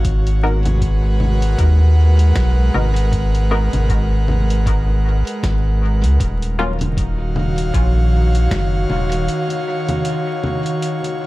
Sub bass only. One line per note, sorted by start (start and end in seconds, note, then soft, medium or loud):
0.04 1.55 G#1 loud
1.58 2.32 D#2 loud
2.35 2.70 B1 medium
2.74 3.69 G#1 loud
3.73 5.23 G#1 medium
5.43 6.05 G#1 medium
6.03 6.18 C#2 loud
6.20 7.71 D#1 loud
7.74 8.48 A#1 loud
8.51 8.85 F#1 medium
8.89 9.28 D#1 loud